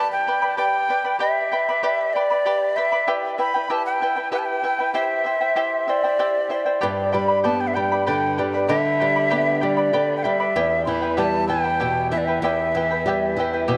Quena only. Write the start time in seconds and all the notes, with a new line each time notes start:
Already playing: A5
0.12 G5
0.58 G5
1.21 E5
2.13 D5
2.76 E5
3.39 B5
3.71 A5
3.86 G5
4.34 G5
4.39 A5
4.46 G5
4.94 E5
5.89 D5
6.52 D5
7.13 B5
7.43 A5
7.61 G5
7.67 E5
7.74 G5
8.07 G5
8.68 E5
9.55 E5
9.61 D5 E5
10.17 G5
10.23 E5
10.85 B5 C6
11.18 A5
11.49 G5
12.11 E5
12.18 D5
12.25 E5
12.42 E5